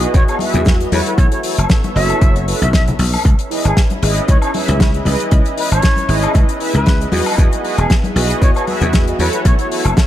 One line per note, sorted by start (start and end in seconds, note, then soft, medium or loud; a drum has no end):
0.00 1.15 B3 medium
0.00 1.15 E4 medium
0.00 0.37 F#4 loud
0.00 0.38 G#4 medium
0.00 1.15 G#4 medium
0.00 0.38 B4 medium
0.00 0.38 D#5 loud
0.00 closed hi-hat medium
0.00 cabasa medium
0.14 0.23 E2 loud
0.14 0.23 C#5 medium
0.14 kick loud
0.14 closed hi-hat medium
0.14 cabasa medium
0.28 0.36 C#5 medium
0.28 closed hi-hat medium
0.28 cabasa soft
0.28 high woodblock medium
0.39 0.77 F#4 medium
0.39 0.77 G#4 medium
0.39 0.77 B4 medium
0.39 0.77 E5 loud
0.39 open hi-hat loud
0.39 high conga medium
0.54 0.85 E2 loud
0.54 closed hi-hat medium
0.54 high conga loud
0.54 low conga medium
0.54 cabasa medium
0.65 kick loud
0.65 snare loud
0.65 closed hi-hat medium
0.65 cabasa medium
0.79 0.89 F#4 medium
0.79 0.89 G#4 medium
0.79 0.89 B4 medium
0.79 0.89 D#5 medium
0.79 closed hi-hat medium
0.79 cabasa soft
0.92 1.01 E2 medium
0.92 1.41 E4 loud
0.92 1.41 F#4 medium
0.92 1.41 A4 medium
0.92 1.01 B4 medium
0.92 1.41 C#5 loud
0.92 open hi-hat loud
0.92 high conga loud
1.06 1.14 B4 medium
1.06 closed hi-hat medium
1.06 cabasa medium
1.17 1.26 B1 loud
1.17 3.23 B3 medium
1.17 3.22 A4 medium
1.17 1.27 C#5 medium
1.17 3.22 C#5 medium
1.17 3.23 E5 medium
1.17 kick loud
1.17 closed hi-hat medium
1.17 cabasa medium
1.32 1.39 C#5 medium
1.32 closed hi-hat medium
1.32 cabasa soft
1.43 1.56 E4 medium
1.43 1.56 F#4 medium
1.43 1.57 A4 medium
1.43 1.57 C#5 medium
1.43 open hi-hat loud
1.57 1.65 F#1 medium
1.57 closed hi-hat medium
1.57 cabasa medium
1.57 high woodblock medium
1.69 kick loud
1.69 snare loud
1.69 closed hi-hat medium
1.69 cabasa medium
1.83 closed hi-hat medium
1.83 high conga medium
1.83 cabasa soft
1.95 2.12 F#1 medium
1.95 2.45 E4 loud
1.95 2.45 F#4 medium
1.95 2.45 A4 medium
1.95 2.45 C#5 loud
1.95 2.35 E5 medium
1.95 open hi-hat loud
2.09 closed hi-hat medium
2.09 cabasa medium
2.09 high woodblock medium
2.21 2.52 F#1 medium
2.21 kick loud
2.21 closed hi-hat medium
2.21 cabasa medium
2.36 closed hi-hat medium
2.36 cabasa soft
2.47 2.60 E4 medium
2.47 2.60 F#4 medium
2.47 2.60 A4 medium
2.47 2.60 B4 medium
2.47 open hi-hat loud
2.62 2.92 B1 medium
2.62 2.69 E5 medium
2.62 closed hi-hat soft
2.62 low conga medium
2.62 cabasa medium
2.73 2.82 E5 medium
2.73 kick loud
2.73 snare loud
2.73 closed hi-hat medium
2.73 cabasa medium
2.87 closed hi-hat medium
2.87 low conga medium
2.87 cabasa soft
2.99 3.15 B1 medium
2.99 open hi-hat loud
2.99 high conga medium
3.13 open hi-hat medium
3.13 cabasa medium
3.13 high woodblock medium
3.25 3.33 C#2 loud
3.25 7.09 C#4 medium
3.25 7.09 E4 medium
3.25 7.09 B4 medium
3.25 kick loud
3.25 closed hi-hat medium
3.25 cabasa medium
3.39 closed hi-hat medium
3.39 cabasa soft
3.50 3.63 E4 medium
3.50 3.63 G#4 medium
3.50 3.63 B4 medium
3.50 3.64 D#5 medium
3.50 open hi-hat loud
3.65 3.72 G#1 medium
3.65 3.80 G#4 medium
3.65 closed hi-hat medium
3.65 cabasa medium
3.65 high woodblock medium
3.77 kick loud
3.77 snare loud
3.77 closed hi-hat medium
3.77 cabasa medium
3.90 closed hi-hat soft
3.90 high conga medium
3.90 cabasa soft
4.02 4.19 G#1 loud
4.02 4.51 E4 loud
4.02 4.52 G#4 medium
4.02 4.52 B4 medium
4.02 4.52 D#5 loud
4.02 open hi-hat loud
4.17 closed hi-hat soft
4.17 cabasa medium
4.28 4.37 C#2 loud
4.28 4.37 C#5 medium
4.28 kick loud
4.28 closed hi-hat medium
4.28 cabasa medium
4.42 4.50 C#5 medium
4.42 closed hi-hat medium
4.42 cabasa soft
4.42 high woodblock medium
4.54 4.90 E4 medium
4.54 4.91 G#4 medium
4.54 4.91 B4 medium
4.54 4.91 E5 loud
4.54 open hi-hat loud
4.54 high conga medium
4.68 4.99 C#2 loud
4.68 closed hi-hat medium
4.68 high conga medium
4.68 low conga medium
4.68 cabasa medium
4.80 kick loud
4.80 snare loud
4.80 closed hi-hat medium
4.80 cabasa medium
4.94 5.03 E4 medium
4.94 5.03 G#4 medium
4.94 5.03 B4 medium
4.94 5.03 D#5 medium
4.94 closed hi-hat medium
4.94 cabasa soft
5.05 5.14 C#2 medium
5.05 5.54 E4 loud
5.05 5.54 G#4 medium
5.05 5.55 B4 medium
5.05 5.55 D#5 loud
5.05 open hi-hat loud
5.05 high conga medium
5.19 closed hi-hat medium
5.19 cabasa medium
5.31 5.40 C#2 loud
5.31 kick loud
5.31 closed hi-hat medium
5.31 cabasa medium
5.45 closed hi-hat medium
5.45 cabasa soft
5.56 5.70 E4 medium
5.56 5.70 G#4 medium
5.56 5.70 B4 medium
5.56 5.69 B4 medium
5.56 5.70 D#5 loud
5.56 open hi-hat loud
5.70 5.79 G#1 medium
5.70 6.23 C#5 medium
5.70 closed hi-hat medium
5.70 cabasa medium
5.70 high woodblock medium
5.82 kick loud
5.82 snare loud
5.82 closed hi-hat medium
5.82 cabasa medium
5.96 closed hi-hat medium
5.96 high conga medium
5.96 cabasa soft
6.09 6.25 G#1 loud
6.09 6.58 E4 medium
6.09 6.58 G#4 medium
6.09 6.58 B4 medium
6.09 6.59 D#5 loud
6.09 open hi-hat loud
6.22 closed hi-hat medium
6.22 cabasa medium
6.22 high woodblock medium
6.34 6.43 C#2 loud
6.34 kick loud
6.34 closed hi-hat medium
6.34 cabasa medium
6.49 closed hi-hat medium
6.49 cabasa soft
6.60 6.97 E4 medium
6.60 6.97 G#4 medium
6.60 6.97 B4 medium
6.60 6.98 E5 loud
6.60 open hi-hat loud
6.74 7.05 C#2 loud
6.74 7.13 B4 loud
6.74 closed hi-hat medium
6.74 low conga medium
6.74 cabasa medium
6.86 kick loud
6.86 snare loud
6.86 closed hi-hat medium
6.86 cabasa medium
7.00 7.09 E4 medium
7.00 7.09 G#4 medium
7.00 7.09 B4 medium
7.00 7.10 D#5 medium
7.00 closed hi-hat medium
7.00 cabasa soft
7.12 7.21 E2 medium
7.12 9.43 B3 medium
7.12 9.43 E4 medium
7.12 7.61 F#4 loud
7.12 7.61 G#4 medium
7.12 9.43 G#4 medium
7.12 7.61 B4 medium
7.12 7.61 D#5 loud
7.12 open hi-hat loud
7.12 high conga medium
7.26 open hi-hat medium
7.26 cabasa medium
7.26 high woodblock medium
7.38 7.47 E2 loud
7.38 kick loud
7.38 closed hi-hat medium
7.38 cabasa medium
7.52 closed hi-hat medium
7.52 cabasa soft
7.63 7.76 F#4 medium
7.63 7.77 G#4 medium
7.63 7.77 B4 medium
7.63 7.77 D#5 medium
7.63 open hi-hat medium
7.78 7.85 E1 medium
7.78 7.93 G#4 loud
7.78 closed hi-hat medium
7.78 cabasa medium
7.78 high woodblock medium
7.90 kick loud
7.90 snare loud
7.90 closed hi-hat loud
7.90 cabasa medium
8.04 closed hi-hat medium
8.04 high conga medium
8.04 cabasa soft
8.15 8.32 B1 loud
8.15 8.65 F#4 loud
8.15 8.65 G#4 medium
8.15 8.65 B4 medium
8.15 8.65 D#5 loud
8.15 open hi-hat loud
8.29 closed hi-hat medium
8.29 cabasa medium
8.42 8.50 E2 medium
8.42 8.51 C#5 medium
8.42 kick loud
8.42 closed hi-hat medium
8.42 cabasa medium
8.54 8.63 C#5 medium
8.54 closed hi-hat medium
8.54 cabasa soft
8.54 high woodblock medium
8.67 9.04 F#4 medium
8.67 9.04 G#4 medium
8.67 9.04 B4 medium
8.67 9.04 E5 loud
8.67 open hi-hat loud
8.67 high conga medium
8.81 9.12 E2 loud
8.81 closed hi-hat medium
8.81 high conga medium
8.81 low conga medium
8.81 cabasa medium
8.93 kick loud
8.93 snare loud
8.93 closed hi-hat medium
8.93 cabasa medium
9.07 9.16 F#4 medium
9.07 9.16 G#4 medium
9.07 9.17 B4 medium
9.07 9.17 D#5 medium
9.07 closed hi-hat medium
9.07 cabasa soft
9.19 9.28 E2 medium
9.19 9.68 E4 loud
9.19 9.68 F#4 medium
9.19 9.68 A4 medium
9.19 9.29 B4 medium
9.19 9.68 C#5 loud
9.19 open hi-hat loud
9.19 high conga medium
9.33 9.41 B4 medium
9.33 closed hi-hat medium
9.33 cabasa medium
9.45 9.54 B1 loud
9.45 10.07 B3 medium
9.45 10.07 E4 medium
9.45 10.07 A4 medium
9.45 10.07 C#5 medium
9.45 9.54 C#5 medium
9.45 kick loud
9.45 closed hi-hat loud
9.45 cabasa medium
9.59 9.67 C#5 medium
9.59 closed hi-hat medium
9.59 cabasa soft
9.71 9.84 E4 medium
9.71 9.84 F#4 medium
9.71 9.84 A4 medium
9.71 9.84 C#5 medium
9.71 open hi-hat loud
9.85 9.92 F#1 medium
9.85 closed hi-hat medium
9.85 cabasa medium
9.85 high woodblock medium
9.97 kick loud
9.97 snare loud
9.97 closed hi-hat medium
9.97 cabasa medium